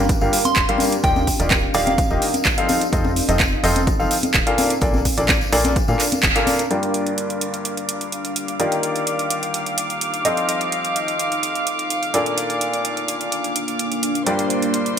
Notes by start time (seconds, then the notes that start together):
Already playing: G1 D4 G4 A#4 F5
0.09 kick, closed hi-hat, tambourine
0.21 G1 G2 A#3 D4 F4 G4 F5, tambourine
0.33 open hi-hat, tambourine
0.45 C6, closed hi-hat, tambourine, high conga
0.55 F1, kick, clap, closed hi-hat, tambourine
0.69 G2 A#3 D4 F4 G4 F5, closed hi-hat
0.78 open hi-hat, tambourine, high conga
0.92 closed hi-hat, tambourine
1.04 D#1 D#3 A#3 D#4 F4 G4 D5 G5, kick, closed hi-hat, tambourine
1.16 tambourine, high conga
1.27 kick, open hi-hat, tambourine
1.39 D#1 D#3 A#3 D#4 F4 G4 D5, closed hi-hat, tambourine
1.50 kick, clap, closed hi-hat, tambourine, high conga
1.66 D5
1.74 D#1 D#3 A#3 D#4 F4 G4 D5 F5, open hi-hat, tambourine
1.87 F5, closed hi-hat, tambourine, high conga
1.98 kick, closed hi-hat, tambourine
2.10 D#1 D#3 A#3 D#4 F4 G4 D#5, tambourine
2.22 open hi-hat, tambourine
2.34 closed hi-hat, tambourine, high conga
2.45 A#1, kick, clap, closed hi-hat, tambourine
2.58 F3 C4 D#4 F4 A4 F5, closed hi-hat
2.69 open hi-hat, tambourine, high conga
2.81 closed hi-hat, tambourine
2.93 F1 F3 C4 D#4 F4 A4 C5 D#5, kick, closed hi-hat, tambourine
3.04 tambourine, high conga
3.16 open hi-hat, tambourine
3.29 F1 F3 C4 D#4 F4 A4 D#5, closed hi-hat, tambourine
3.40 kick, clap, closed hi-hat, tambourine, high conga
3.64 F1 F3 C4 D#4 F4 A4 D#5, open hi-hat, tambourine
3.76 closed hi-hat, tambourine, high conga
3.87 kick, closed hi-hat, tambourine
3.99 F1 F3 C4 D#4 F4 A4 F5, tambourine
4.11 open hi-hat, tambourine
4.23 closed hi-hat, tambourine, high conga
4.34 D#1, kick, clap, closed hi-hat, tambourine
4.47 A#2 A#3 D4 F4 A4 F5, closed hi-hat
4.58 D4, open hi-hat, tambourine, high conga
4.67 A#4, closed hi-hat, tambourine
4.81 A#1 A#2 A#3 D4 F4 A4 D5, kick, closed hi-hat, tambourine
4.94 tambourine, high conga
5.05 kick, open hi-hat, tambourine
5.17 A#1 A#2 A#3 D4 F4 A4 D5, closed hi-hat, tambourine
5.29 kick, clap, closed hi-hat, tambourine, high conga
5.41 tambourine
5.52 A#1 A#2 A#3 D4 F4 A4 D5, open hi-hat, tambourine
5.65 closed hi-hat, tambourine, high conga
5.76 kick, closed hi-hat, tambourine
5.88 A#2 A#3 D4 F4 A4 F5, tambourine
5.99 clap, open hi-hat, tambourine
6.12 closed hi-hat, tambourine, high conga
6.23 F1, kick, clap, closed hi-hat, tambourine
6.36 A#2 A#3 D4 F4 A4 F5, closed hi-hat, tambourine
6.47 open hi-hat, tambourine, high conga
6.59 closed hi-hat, tambourine
6.70 G2 A#3 D4 F4 G4 D5 F5 D6, closed hi-hat
6.83 closed hi-hat
6.94 closed hi-hat
6.99 G4
7.07 closed hi-hat
7.18 closed hi-hat
7.30 closed hi-hat
7.41 closed hi-hat
7.54 closed hi-hat
7.65 closed hi-hat
7.77 closed hi-hat
7.89 closed hi-hat
8.01 closed hi-hat
8.12 closed hi-hat
8.25 closed hi-hat
8.36 closed hi-hat
8.48 closed hi-hat
8.60 D#3 A#3 D#4 F4 G4 D5, closed hi-hat
8.72 closed hi-hat
8.83 closed hi-hat
8.96 closed hi-hat
9.00 D6
9.07 closed hi-hat
9.19 closed hi-hat
9.30 closed hi-hat
9.43 closed hi-hat
9.54 closed hi-hat
9.66 closed hi-hat
9.78 closed hi-hat
9.90 closed hi-hat
10.01 closed hi-hat
10.14 closed hi-hat
10.25 F3 C4 D#4 F4 A4 D#5, closed hi-hat
10.37 closed hi-hat
10.46 A4 C5, closed hi-hat
10.61 closed hi-hat
10.72 closed hi-hat
10.85 closed hi-hat
10.96 closed hi-hat
11.08 closed hi-hat
11.19 closed hi-hat
11.32 closed hi-hat
11.43 closed hi-hat
11.55 closed hi-hat
11.67 closed hi-hat
11.79 closed hi-hat
11.90 closed hi-hat
12.03 closed hi-hat
12.14 A#2 A#3 D4 F4 A4 D5, closed hi-hat
12.23 A#3, closed hi-hat
12.38 closed hi-hat
12.50 F5, closed hi-hat
12.61 closed hi-hat
12.73 closed hi-hat
12.85 closed hi-hat
12.97 closed hi-hat
13.08 closed hi-hat
13.21 closed hi-hat
13.32 closed hi-hat
13.44 closed hi-hat
13.56 closed hi-hat
13.68 closed hi-hat
13.79 closed hi-hat
13.92 closed hi-hat
14.03 closed hi-hat
14.15 closed hi-hat
14.27 G2 A#3 D4 F4 G4 C5 D5 C6, closed hi-hat
14.39 G4, closed hi-hat
14.50 closed hi-hat
14.62 closed hi-hat
14.74 closed hi-hat
14.86 closed hi-hat